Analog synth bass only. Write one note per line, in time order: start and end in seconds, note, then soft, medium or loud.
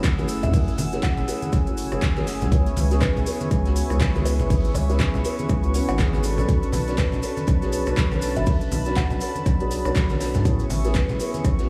0.00 0.45 F#1 medium
0.43 0.72 F#2 loud
0.78 1.09 F#1 loud
1.18 1.24 F#1 medium
1.53 1.83 F#1 loud
1.92 2.43 F#1 medium
2.42 2.71 C#2 loud
2.77 3.07 C#2 medium
3.16 3.22 C#2 medium
3.51 3.82 C#2 loud
3.90 4.41 C#2 medium
4.40 4.69 G#1 loud
4.75 5.06 C#2 medium
5.14 5.21 C#2 medium
5.49 5.80 C#2 loud
5.89 6.40 G#1 loud
6.38 6.67 B1 medium
6.73 7.04 B1 loud
7.13 7.19 B1 medium
7.48 7.78 B1 loud
7.87 8.38 B1 medium
8.37 8.66 F#1 loud
8.72 9.02 B1 loud
9.11 9.18 B1 medium
9.46 9.77 B1 loud
9.85 10.36 B1 medium
10.35 10.64 A2 loud
10.70 11.01 A1 loud
11.09 11.16 A1 medium
11.44 11.69 A1 loud